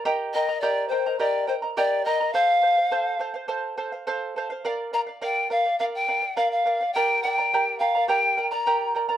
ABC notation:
X:1
M:4/4
L:1/16
Q:1/4=104
K:Gm
V:1 name="Pan flute"
z2 e2 d2 c2 d2 c2 d2 e2 | f6 z8 z2 | z2 b2 g2 f2 f g3 f f3 | g2 g4 f2 g3 b3 z2 |]
V:2 name="Charango"
[GBegb]2 [Begb] [Beb] [GBegb]2 [Begb] [Beb] [GBegb]2 [Begb] [Beb] [GBegb]2 [Begb] [Beb] | [Acf]2 [Acf] [cf] [Acf]2 [Acf] [cf] [Acf]2 [Acf] [cf] [Acf]2 [Acf] [cf] | [Bdf]2 [Bdf] [df] [Bdf]2 [Bdf] [df] [Bdf]2 [Bdf] [df] [Bdf]2 [Bdf] [df] | [GBdgb]2 [Bdgb] [Bdb] [GBdgb]2 [Bdgb] [Bdb] [GBdgb]2 [Bdgb] [Bdb] [GBdgb]2 [Bdgb] [Bdb] |]